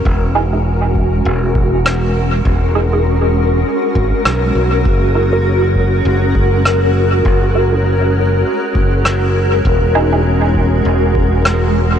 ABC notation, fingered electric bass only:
X:1
M:4/4
L:1/8
Q:"Swing 16ths" 1/4=100
K:Elyd
V:1 name="Fingered electric bass" clef=bass
E,,,4 E,,,4 | E,,,4 z G,,, B,,, B,,, | F,,,4 F,,,4 | F,,,4 z F,,,3 |
E,,,4 E,,,4 |]